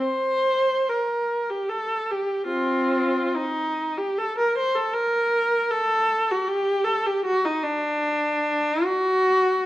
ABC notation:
X:1
M:3/4
L:1/16
Q:1/4=75
K:Gm
V:1 name="Viola"
c4 B3 G A2 G2 | [CF]4 E3 G A B c A | B4 A3 ^F G2 A G | ^F E D6 F4 |]